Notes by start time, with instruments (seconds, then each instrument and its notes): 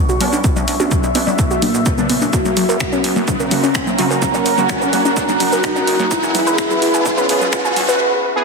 Already playing: analog synth lead C#4, analog synth pad F#4 C#5 F#5, ambient pad E5 B5 C#6, riser
0.09 analog synth bass B1, synth arpeggio sound F#4, shaker
0.21 analog synth bass F#1, synth stab B3 C#4 D4, open hi-hat, low conga, shaker
0.33 analog synth bass B1, synth arpeggio sound D4, shaker
0.44 synth arpeggio sound B3, kick, shaker
0.56 analog synth bass D2, synth arpeggio sound D5, low conga, shaker
0.68 analog synth bass D2, open hi-hat, shaker
0.80 analog synth bass D2, synth stab B3 C#4 D4, synth arpeggio sound F#4, shaker
0.91 kick, low conga, shaker
1.03 analog synth bass B1, synth arpeggio sound D4, shaker
1.15 analog synth bass B1, synth stab B3 C#4 D4, synth arpeggio sound B3, open hi-hat, shaker
1.27 analog synth bass B1, synth arpeggio sound D5, low conga, shaker
1.39 kick, shaker
1.51 analog synth bass B1, synth arpeggio sound F#4, shaker
1.62 analog synth bass B1, analog synth lead A#3, synth arpeggio sound D4, open hi-hat, low conga, shaker
1.74 analog synth bass B1, shaker
1.86 synth arpeggio sound B3, kick, shaker
1.98 analog synth bass F#1, synth stab C#3 B3 D4, synth arpeggio sound A#3, low conga, shaker
2.10 analog synth bass F#1, synth arpeggio sound B3, open hi-hat, shaker
2.22 analog synth bass F#1, synth arpeggio sound D4, shaker
2.33 ambient pad C#4, analog synth lead F#4, analog synth pad A#4 C#5 A#5, kick, shaker
2.45 analog synth bass F#1, synth arpeggio sound A#3, low conga, shaker
2.54 analog synth bass F#1, synth arpeggio sound F#3, ambient pad A#4, open hi-hat, shaker
2.61 ambient pad A#5
2.69 analog synth bass F#1, synth arpeggio sound A#4, shaker
2.80 finger snap, kick, low conga, shaker
2.92 synth arpeggio sound C#4, shaker
3.04 analog synth bass F#1, open hi-hat, shaker
3.13 analog synth bass F#1, synth arpeggio sound A#3, ambient pad F#5, low conga, shaker
3.28 synth arpeggio sound F#3, analog synth lead C#4, kick, shaker
3.40 analog synth bass F#1, synth arpeggio sound A#4, shaker
3.51 analog synth bass F#1, synth stab C#3 A#3 F#4, open hi-hat, low conga, shaker
3.63 synth arpeggio sound C#4, shaker
3.75 finger snap, kick, shaker
3.87 analog synth bass F#1, synth arpeggio sound A#3, low conga, shaker
3.99 analog synth bass F#2, synth stab C#3 A#3 F#4, synth arpeggio sound F#3, open hi-hat, shaker
4.11 analog synth bass F#1, synth arpeggio sound A#4, shaker
4.22 kick, low conga, shaker
4.34 analog synth bass A#1, synth arpeggio sound C#4, shaker
4.46 analog synth bass A#1, open hi-hat, shaker
4.58 analog synth bass A#1, synth stab C#3 A#3 F#4, synth arpeggio sound A#3, low conga, shaker
4.69 synth arpeggio sound F#3, finger snap, kick, shaker
4.82 analog synth bass F#1, synth arpeggio sound A#4, shaker
4.93 analog synth bass F#1, synth stab C#3 A#3 F#4, open hi-hat, low conga, shaker
5.05 synth arpeggio sound C#4, shaker
5.17 kick, shaker
5.29 analog synth bass F#1, synth arpeggio sound A#3, low conga, shaker
5.40 synth arpeggio sound F#3, analog synth lead F#4, open hi-hat, shaker
5.52 analog synth bass F#1, synth arpeggio sound A#4, shaker
5.64 finger snap, kick, low conga, shaker
5.76 analog synth bass C#2, synth arpeggio sound C#4, shaker
5.87 analog synth bass C#2, open hi-hat, shaker
6.00 analog synth bass C#2, synth arpeggio sound A#3, low conga, shaker
6.11 ambient pad B3, analog synth lead E4, synth arpeggio sound E4, analog synth pad G#4 B4 E5 B5, kick, shaker
6.23 synth arpeggio sound G#5, shaker
6.35 open hi-hat, low conga, shaker
6.42 ambient pad G#4
6.47 synth arpeggio sound B4, shaker
6.58 finger snap, kick, shaker
6.70 synth arpeggio sound G#4, low conga, shaker
6.82 synth arpeggio sound E4, open hi-hat, shaker
6.94 synth arpeggio sound G#5, shaker
7.06 analog synth lead C#4, kick, low conga, shaker
7.18 synth arpeggio sound B4, shaker
7.29 analog synth bass E1, synth stab E3 B3 G#4, open hi-hat, shaker
7.41 synth arpeggio sound G#4, low conga, shaker
7.53 synth arpeggio sound E4, finger snap, kick, shaker
7.65 synth arpeggio sound G#5, shaker
7.76 analog synth bass E2, open hi-hat, low conga, shaker
7.89 analog synth bass E1, synth arpeggio sound B4, shaker
8.36 synth stab E3 B3 G#4